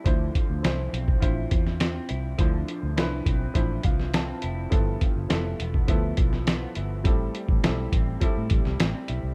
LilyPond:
<<
  \new Staff \with { instrumentName = "Upright piano" } { \time 4/4 \key d \dorian \tempo 4 = 103 << { r1 | r2 r8 f''8 a''4 | r1 | r1 | } \\ { <f d' e' c''>8 r8 <f d' e' c''>8 r8 <d' e' f' c''>4. r8 | <f d' e' c''>8 r8 <f d' e' b'>8 r8 <f d' e' c''>4. r8 | <f b e' a'>8 r8 <f b e' a'>8 r8 <f b e' a'>4. r8 | <g c' e' a'>8 r8 <g c' e' a'>8 r8 <g c' e' a'>4. r8 | } >> }
  \new Staff \with { instrumentName = "Clean electric guitar" } { \time 4/4 \key d \dorian d8 f8 e'8 c'8 e'4 c'8 e'8 | d8 f8 e'8 c'8 e'8 f8 c'8 e'8 | g,8 f8 e'8 b8 e'8 f8 b8 e'8 | a,8 g8 e'8 c'8 e'8 g8 c'8 e'8 | }
  \new Staff \with { instrumentName = "Fingered electric bass" } { \clef bass \time 4/4 \key d \dorian d,8 r16 d,16 c,8 b,,8 a,,8 e,4 c,8 | d,8 r16 d,16 c,8 b,,8 a,,8 c,4 f,,8 | g,,8 r16 g,,16 f,,8 e,,8 d,8 b,,4 g,,8 | a,,8 r16 a,,16 b,,8 a,,8 r16 a,16 a,,16 c,16 a,,16 r16 b,,16 c,16 | }
  \new DrumStaff \with { instrumentName = "Drums" } \drummode { \time 4/4 <hh bd>8 <hh bd>8 <hh sn>8 hh16 bd16 <hh bd>8 <hh bd>16 sn16 <hh sn>8 hh8 | <hh bd>8 hh8 <hh sn>8 <hh bd>8 <hh bd>8 <hh bd>16 sn16 <hh sn>8 hh8 | <hh bd>8 <hh bd>8 <hh sn>8 hh16 bd16 <hh bd>8 <hh bd>16 sn16 <hh sn>8 hh8 | <hh bd>8 hh16 bd16 <hh sn>8 <hh bd>8 <hh bd>8 <hh bd>16 sn16 <hh sn>8 hh8 | }
>>